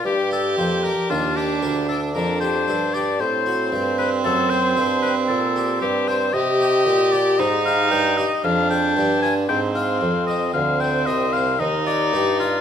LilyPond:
<<
  \new Staff \with { instrumentName = "Oboe" } { \time 3/4 \key g \minor \tempo 4 = 57 g'16 a'16 c''16 bes'16 f'16 g'8 a'16 bes'16 c''8 d''16 | c''8. ces''16 a'16 c''8 ces''16 a'8 g'16 c''16 | \key f \dorian ees''8. d''16 ees''16 f''16 g''16 ees''16 f''16 g''8 aes''16 | g''16 f''8 ees''16 f''16 g''16 ees''16 f''16 ees''16 d''8 f'16 | }
  \new Staff \with { instrumentName = "Violin" } { \time 3/4 \key g \minor g'4 d'4 d'4 | c'2. | \key f \dorian g'4 ees'4 d'4 | c'4 c'4 ees'4 | }
  \new Staff \with { instrumentName = "Harpsichord" } { \time 3/4 \key g \minor r16 g'16 bes16 d'16 bes16 d'16 bes'16 d'16 bes16 g'16 a'16 g'16 | r16 fis'16 a16 c'16 a16 c'16 a'16 c'16 r16 g'16 r16 d'16 | \key f \dorian r16 g'16 c'16 g'16 c'16 g'16 c''16 g'16 r16 aes'16 c'16 f'16 | r16 f'16 r16 c'16 r16 c'16 f'16 c'16 r16 f'16 g'16 f'16 | }
  \new Staff \with { instrumentName = "Harpsichord" } { \clef bass \time 3/4 \key g \minor g,8 f,8 ees,8 d,8 f,8 g,8 | a,8 g,8 fis,8 g,8 bes,8 g,8 | \key f \dorian c8 bes,8 aes,8 g,8 f,8 g,8 | aes,8 f,8 d,8 c,8 ees,8 g,8 | }
  \new Staff \with { instrumentName = "Bassoon" } { \clef bass \time 3/4 \key g \minor g,8 f,8 ees,8 d,8 f,8 g,8 | a,8 g,8 fis,8 g,8 bes,8 g,8 | \key f \dorian c8 bes,8 aes,8 g,8 f,8 g,8 | aes,8 f,8 d,8 c,8 ees,8 g,8 | }
>>